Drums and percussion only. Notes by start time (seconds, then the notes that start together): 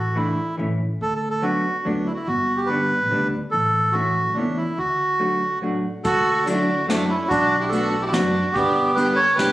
6.04 kick, closed hi-hat
6.47 closed hi-hat
6.90 snare, closed hi-hat
7.31 kick, closed hi-hat
7.72 closed hi-hat
8.14 snare, closed hi-hat
8.56 kick, closed hi-hat
8.97 closed hi-hat
9.39 snare, closed hi-hat